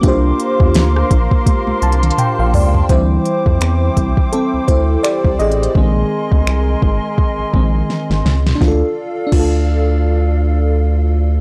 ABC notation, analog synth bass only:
X:1
M:4/4
L:1/16
Q:"Swing 16ths" 1/4=84
K:Dm
V:1 name="Analog synth bass" clef=bass
C,,2 z E,, D,,2 B,,, z2 C,, C,,2 z B,,, ^C,,2 | D,,2 z F,, E,,2 C,, z2 D,, D,,2 z C,, A,,,2 | B,,,2 z D,, C,,2 _A,,, z2 B,,, B,,,2 z A,,, ^C,,2 | D,, z3 D,,12 |]